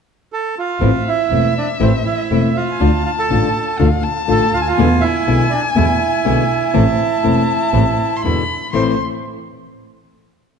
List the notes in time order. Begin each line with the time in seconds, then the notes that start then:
0.32 A4 A5
0.58 F4 F5
0.80 A1 E3 A3 C4 E4 E5
1.08 E4 E5
1.30 E1 E3 A3 C4 E4
1.58 D4 D5
1.80 A1 E3 A3 C4 E4 C5
2.05 E4 E5
2.31 E1 E3 A3 C4 E4
2.56 F4 F5
2.72 G#5
2.80 D2 D3 A3 D4 F4 A5
3.05 F4 F5
3.19 A4 A5
3.30 A1 D3 A3 D4 F4
3.78 D2 D3 A3 D4 F4 F5
4.03 A5
4.27 A1 D3 A3 D4 F4 A4 A5
4.53 D2 F4 F5
4.61 G#5
4.68 F4 F5
4.77 E2 B2 D3 G#3 B3 E4 G#5
5.01 E4 E5
5.27 B1 B2 D3 G#3 B3 E4
5.50 D4 D5
5.76 E2 B2 D3 G#3 B3 E4 E5
5.80 E4
6.25 B1 B2 D3 G#3 B3 E4
6.74 A1 E3 A3 C4 E4 A5
7.23 E1 E3 A3 C4 E4
7.73 A1 E3 A3 C4 E4
8.16 C6
8.22 E2 B2 D3 G#3 B3 E4 B5
8.73 A1 A2 E3 A3 C4 E4 C5 C6